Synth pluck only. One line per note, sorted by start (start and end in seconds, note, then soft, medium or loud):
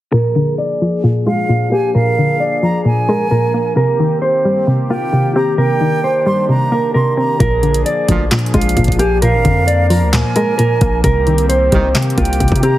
0.13 1.03 A#2 medium
0.36 1.49 D3 medium
0.82 1.95 F3 medium
1.04 1.48 A#2 loud
1.27 2.40 G#3 medium
1.49 1.94 A#2 medium
1.72 2.85 A#3 medium
1.95 2.84 A#2 loud
2.18 3.32 D3 medium
2.63 3.77 F3 medium
2.85 3.30 A#2 medium
3.09 3.77 G#3 medium
3.31 3.77 A#2 medium
3.54 3.77 A#3 medium
3.76 4.66 C3 medium
4.00 5.13 D#3 medium
4.45 5.59 G3 medium
4.67 5.12 C3 medium
4.90 6.04 A#3 medium
5.13 5.57 C3 medium
5.36 6.49 C4 medium
5.58 6.48 C3 medium
5.81 6.95 D#3 medium
6.26 7.40 G3 medium
6.49 6.94 C3 medium
6.72 7.40 A#3 medium
6.95 7.40 C3 medium
7.17 7.40 C4 medium
7.40 8.30 A#2 medium
7.63 8.77 D3 medium
8.09 9.22 F3 medium
8.31 8.75 A#2 loud
8.54 9.68 G#3 medium
8.77 9.21 A#2 medium
8.99 10.13 A#3 medium
9.22 10.11 A#2 loud
9.46 10.59 D3 medium
9.90 11.04 F3 medium
10.13 10.58 A#2 medium
10.36 11.04 G#3 loud
10.59 11.04 A#2 medium
10.82 11.04 A#3 medium
11.04 11.94 C3 medium
11.27 12.40 D#3 medium
11.72 12.78 G3 medium
11.95 12.39 C3 loud
12.18 12.78 A#3 medium
12.40 12.78 C3 medium
12.63 12.78 C4 medium